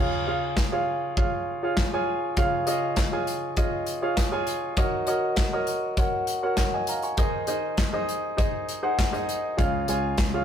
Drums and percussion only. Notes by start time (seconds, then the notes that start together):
0.57 kick, snare, clap
1.17 kick
1.77 kick, snare, clap
2.37 kick, closed hi-hat
2.67 closed hi-hat
2.96 kick, snare, clap, closed hi-hat
3.27 closed hi-hat
3.57 kick, closed hi-hat
3.86 closed hi-hat
4.17 kick, snare, clap, closed hi-hat
4.47 closed hi-hat
4.77 kick, closed hi-hat
5.07 closed hi-hat
5.36 kick, snare, clap, closed hi-hat
5.67 closed hi-hat
5.97 kick, closed hi-hat
6.27 closed hi-hat
6.57 kick, snare, clap, closed hi-hat
6.87 closed hi-hat
7.03 closed hi-hat
7.17 kick, closed hi-hat
7.47 closed hi-hat
7.77 kick, snare, clap, closed hi-hat
8.09 closed hi-hat
8.38 kick, closed hi-hat
8.69 closed hi-hat
8.99 kick, snare, clap, closed hi-hat
9.14 closed hi-hat
9.29 closed hi-hat
9.59 kick, closed hi-hat
9.88 closed hi-hat
10.18 kick, snare, clap, closed hi-hat